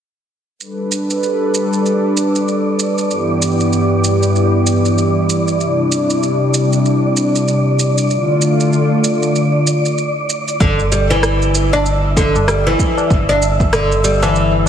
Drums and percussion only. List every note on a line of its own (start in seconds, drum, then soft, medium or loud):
0.60 shaker soft
0.92 shaker medium
1.10 shaker soft
1.23 shaker soft
1.54 shaker medium
1.73 shaker soft
1.86 shaker soft
2.17 shaker medium
2.35 shaker soft
2.48 shaker soft
2.79 shaker medium
2.98 shaker soft
3.11 shaker soft
3.42 shaker medium
3.60 shaker soft
3.73 shaker soft
4.04 shaker medium
4.23 shaker soft
4.36 shaker soft
4.67 shaker medium
4.85 shaker soft
4.98 shaker soft
5.30 shaker medium
5.48 shaker soft
5.61 shaker soft
5.92 shaker medium
6.10 shaker soft
6.23 shaker soft
6.54 shaker medium
6.73 shaker soft
6.86 shaker soft
7.17 shaker medium
7.35 shaker soft
7.48 shaker soft
7.79 shaker medium
7.98 shaker soft
8.10 shaker soft
8.42 shaker medium
8.60 shaker soft
8.73 shaker soft
9.04 shaker medium
9.23 shaker soft
9.36 shaker soft
9.67 shaker medium
9.85 shaker soft
9.98 shaker soft
10.30 shaker medium
10.48 shaker soft
10.60 kick loud
10.60 shaker soft
10.79 shaker soft
10.92 shaker medium
11.10 tabla tin soft
11.10 shaker soft
11.23 cross-stick medium
11.23 shaker soft
11.42 shaker soft
11.55 shaker medium
11.73 tabla na medium
11.73 tabla tin soft
11.73 shaker soft
11.86 shaker soft
12.17 kick medium
12.17 shaker medium
12.35 tabla na medium
12.35 tabla ge medium
12.35 shaker soft
12.48 cross-stick loud
12.48 shaker soft
12.79 kick loud
12.79 shaker medium
12.97 tabla na medium
12.97 tabla tin medium
12.97 shaker soft
13.10 kick loud
13.10 shaker soft
13.29 shaker soft
13.42 shaker medium
13.60 kick loud
13.60 tabla tin soft
13.60 shaker soft
13.73 cross-stick medium
13.73 shaker soft
13.91 tabla tin soft
13.91 shaker soft
14.04 shaker medium
14.22 tabla na medium
14.22 tabla tin soft
14.22 shaker soft
14.36 shaker soft